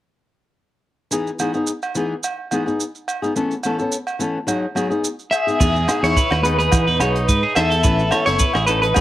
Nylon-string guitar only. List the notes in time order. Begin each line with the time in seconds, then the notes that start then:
1.11 E3 B3 D#4 G#4
1.39 E3 B3 D#4 G#4
1.54 B3 D#4 G#4
1.95 E3 B3 D#4 G#4
2.51 E3 B3 D#4 G#4
2.66 B3 D#4 G#4
3.22 B3 D#4 G#4
3.35 E3 B3 C#4 A4
3.65 E3 B3 C#4 A4
3.80 B3 C#4 A4
4.19 E3 B3 C#4 A4
4.47 F#3 D#4 G#4, muted nylon-string guitar stroke
4.75 F#3 B3 D#4 G#4
4.90 B3 D#4 G#4
5.47 B3 D#4 G#4
5.60 B3 D#4 G#4
5.87 B3 D#4 G#4
6.03 D#4 G#4
6.42 B3 D#4 G#4
6.98 B3 D#4 G#4
7.56 B3 D#4 G#4
7.83 E3 B3 C#4, muted nylon-string guitar stroke
8.12 E3 B3 C#4 A4
8.28 B3 C#4 A4
8.67 E3 C#4 A4
8.95 F#3 B3 D#4 G#4